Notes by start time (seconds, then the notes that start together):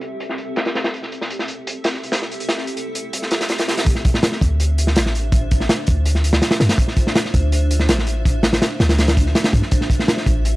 Already playing: C4 G4 A4 E5
0.01 closed hi-hat
0.20 closed hi-hat
0.29 snare
0.38 closed hi-hat
0.56 snare, closed hi-hat
0.65 snare, closed hi-hat
0.75 snare, closed hi-hat
0.84 snare, closed hi-hat
0.93 C4 G4 A4 E5, closed hi-hat
1.02 snare
1.12 closed hi-hat
1.21 snare
1.30 closed hi-hat
1.39 snare
1.48 closed hi-hat
1.67 closed hi-hat
1.84 snare, closed hi-hat
1.94 snare
2.03 closed hi-hat
2.12 snare, closed hi-hat
2.22 snare
2.31 closed hi-hat
2.40 closed hi-hat
2.49 snare, closed hi-hat
2.58 snare
2.67 closed hi-hat
2.77 closed hi-hat
2.95 closed hi-hat
3.13 closed hi-hat
3.22 snare
3.31 snare, closed hi-hat
3.41 snare, closed hi-hat
3.49 snare, closed hi-hat
3.58 snare, closed hi-hat
3.68 snare, closed hi-hat
3.77 snare, closed hi-hat
3.86 kick, closed hi-hat
3.95 snare
4.05 kick, closed hi-hat
4.14 snare
4.23 snare, closed hi-hat
4.32 snare
4.41 D2, kick, closed hi-hat
4.60 closed hi-hat
4.78 closed hi-hat
4.87 snare
4.96 A1, snare, closed hi-hat
5.06 snare
5.15 closed hi-hat
5.32 kick, closed hi-hat
5.51 kick, closed hi-hat
5.60 snare
5.69 snare, closed hi-hat
5.87 D2, kick, closed hi-hat
6.05 closed hi-hat
6.15 snare
6.24 closed hi-hat
6.33 snare
6.42 snare, closed hi-hat
6.51 snare, closed hi-hat
6.60 G2, snare, closed hi-hat
6.69 snare, closed hi-hat
6.78 kick, closed hi-hat
6.88 snare
6.96 kick, closed hi-hat
7.07 snare
7.15 snare, closed hi-hat
7.25 snare
7.34 D2, kick, closed hi-hat
7.52 closed hi-hat
7.71 closed hi-hat
7.79 snare
7.88 A1, snare, closed hi-hat
7.98 snare
8.07 closed hi-hat
8.25 kick, closed hi-hat
8.43 snare, closed hi-hat
8.53 snare, closed hi-hat
8.62 snare, closed hi-hat
8.80 D2, snare, closed hi-hat
8.89 snare, closed hi-hat
8.98 snare, closed hi-hat
9.08 snare, closed hi-hat
9.17 kick, closed hi-hat
9.26 snare
9.35 snare, closed hi-hat
9.44 snare, closed hi-hat
9.53 G2, kick, closed hi-hat
9.62 snare
9.71 kick, closed hi-hat
9.81 snare
9.90 kick, closed hi-hat
9.99 snare
10.08 snare, closed hi-hat
10.17 snare
10.26 A1, kick, closed hi-hat
10.45 closed hi-hat